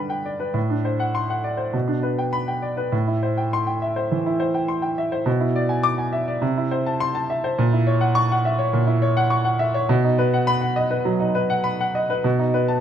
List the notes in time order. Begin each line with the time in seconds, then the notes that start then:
Already playing: G2 D3 D4 B4 D5 G5 B5
0.10 G5
0.26 D5
0.40 B4
0.54 A2
0.70 D4
0.85 C5
1.00 F#5
1.15 C6
1.30 F#5
1.44 D5
1.57 C5
1.73 B2
1.88 D4
2.03 B4
2.19 G5
2.33 B5
2.48 G5
2.62 D5
2.77 B4
2.92 A2
3.07 E4
3.23 C5
3.38 G5
3.53 C6
3.67 G5
3.82 E5
3.96 C5
4.12 E3
4.26 E4
4.40 C5
4.54 G5
4.68 C6
4.82 G5
4.98 E5
5.12 C5
5.26 B2
5.40 E4
5.56 D5
5.69 G#5
5.83 D6
5.98 G#5
6.13 E5
6.28 D5
6.41 C3
6.57 E4
6.71 C5
6.87 A5
7.00 C6
7.15 A5
7.30 E5
7.44 C5
7.59 A#2
7.73 E4
7.87 C#5
8.01 F#5
8.15 C#6
8.32 F#5
8.45 E5
8.59 C#5
8.73 A#2
8.87 E4
9.02 C#5
9.17 F#5
9.30 C#6
9.45 F#5
9.59 E5
9.74 C#5
9.89 B2
10.04 D#4
10.18 B4
10.34 F#5
10.47 B5
10.61 F#5
10.76 D#5
10.91 B4
11.05 F#3
11.20 D#4
11.35 B4
11.50 F#5
11.64 B5
11.81 F#5
11.95 D#5
12.10 B4
12.24 B2
12.39 D#4
12.54 B4
12.68 A5